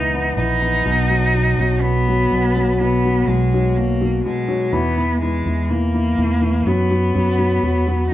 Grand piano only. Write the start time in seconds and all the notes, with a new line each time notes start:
Already playing: E3 B3
0.14 B3
0.38 E3
0.62 B3
0.85 B2
1.10 F#3
1.34 B2
1.59 F#3
1.83 B2
2.08 F#3
2.32 B2
2.57 F#3
2.81 B2
3.05 F#3
3.29 B2
3.54 F#3
3.78 B2
4.01 F#3
4.26 B2
4.48 F#3
4.73 E3
4.97 E3
5.22 E3
5.47 E3
5.70 E3
5.94 E3
6.18 E3
6.42 E3
6.67 F#3
6.91 F#3
7.15 F#3
7.38 F#3
7.63 F#3
7.87 F#3